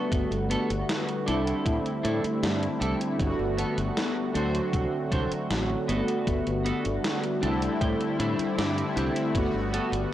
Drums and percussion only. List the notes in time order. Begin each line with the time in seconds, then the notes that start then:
0.12 kick, closed hi-hat
0.32 closed hi-hat
0.51 closed hi-hat
0.70 closed hi-hat
0.89 snare, closed hi-hat
1.09 closed hi-hat
1.28 closed hi-hat
1.47 closed hi-hat
1.66 kick, closed hi-hat
1.86 closed hi-hat
2.05 closed hi-hat
2.24 closed hi-hat
2.43 snare, closed hi-hat
2.63 closed hi-hat
2.82 closed hi-hat
3.01 closed hi-hat
3.20 kick, closed hi-hat
3.58 closed hi-hat
3.78 closed hi-hat
3.97 snare, closed hi-hat
4.35 closed hi-hat
4.55 closed hi-hat
4.73 kick, closed hi-hat
5.12 kick, closed hi-hat
5.32 closed hi-hat
5.51 snare, closed hi-hat
5.89 closed hi-hat
6.08 closed hi-hat
6.27 kick, closed hi-hat
6.47 closed hi-hat
6.66 closed hi-hat
6.85 closed hi-hat
7.04 snare, closed hi-hat
7.24 closed hi-hat
7.43 closed hi-hat
7.62 closed hi-hat
7.81 kick, closed hi-hat
8.01 closed hi-hat
8.20 closed hi-hat
8.39 closed hi-hat
8.59 snare, closed hi-hat
8.78 closed hi-hat
8.97 closed hi-hat
9.16 closed hi-hat
9.35 kick, closed hi-hat
9.74 closed hi-hat
9.93 closed hi-hat